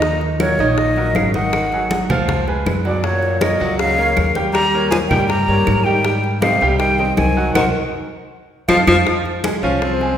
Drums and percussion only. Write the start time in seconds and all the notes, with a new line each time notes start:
0.02 high bongo, high conga
0.21 high bongo, high conga
0.40 high bongo, high conga, claves
0.59 high bongo, high conga
0.78 high bongo, high conga
0.96 high bongo, high conga
1.15 high bongo, low bongo, high conga, claves
1.34 high conga
1.53 high bongo, high conga, claves
1.72 high bongo, high conga
1.91 high bongo, high conga
2.10 high bongo, high conga, low conga, claves
2.29 high bongo, high conga, low conga
2.48 high bongo, high conga
2.66 high bongo, low bongo, high conga, claves
2.85 high conga
3.04 high bongo, high conga
3.22 high bongo, high conga
3.41 high bongo, high conga, claves
3.60 high bongo, high conga
3.79 high bongo, high conga
3.98 high bongo, high conga
4.17 high bongo, low bongo, high conga, claves
4.35 high conga
4.54 high bongo, high conga, claves
4.73 high bongo, high conga
4.92 high bongo, high conga
5.11 high bongo, high conga, low conga, claves
5.29 high bongo, high conga
5.48 high bongo, high conga
5.67 high bongo, low bongo, high conga, claves
5.86 high conga
6.05 high bongo, high conga
6.24 high bongo, high conga
6.42 high bongo, high conga, claves
6.61 high bongo, high conga
6.80 high bongo, high conga
6.98 high bongo, high conga
7.17 high bongo, low bongo, high conga, claves
7.55 low bongo, high conga, claves
8.69 low bongo, high conga, claves
8.87 low bongo, high conga, claves
9.06 high bongo, high conga
9.25 high bongo, high conga
9.44 high bongo, high conga, claves
9.63 high bongo, high conga
9.82 high bongo, high conga
10.01 high bongo, high conga